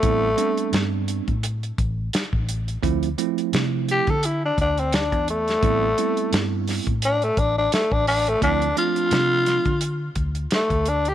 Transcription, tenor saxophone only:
X:1
M:4/4
L:1/16
Q:"Swing 16ths" 1/4=86
K:Am
V:1 name="Tenor saxophone"
A,6 z8 z2 | z6 G A E D D C D2 A,2- | A,6 z2 D A, D D A, D D A, | D2 F8 z2 A,2 D G |]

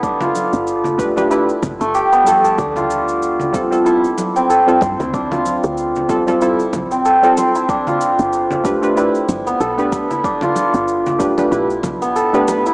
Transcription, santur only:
X:1
M:4/4
L:1/16
Q:"Swing 16ths" 1/4=94
K:Gmix
V:1 name="Santur"
D F4 z3 E z2 A, G B, A, A | D F4 z3 E z2 C A C c E | D F4 z3 E z2 C A C c E | D F4 z3 E z2 B, A B, B E |
D F4 z3 E z2 B, A B, B E |]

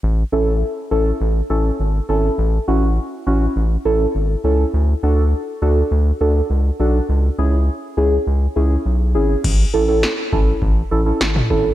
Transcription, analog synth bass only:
X:1
M:4/4
L:1/16
Q:1/4=102
K:A
V:1 name="Analog synth bass" clef=bass
A,,,2 A,,,3 z A,,,2 A,,,2 A,,,2 G,,,2 G,,,2 | A,,,2 A,,,3 z A,,,2 A,,,2 A,,,2 G,,,2 C,,2 | D,,2 D,,3 z D,,2 D,,2 D,,2 C,,2 B,,,2 | C,,2 C,,3 z C,,2 C,,2 C,,2 B,,,2 G,,,2 |
A,,,2 A,,,3 z A,,,2 A,,,2 A,,,2 G,,,2 G,,,2 |]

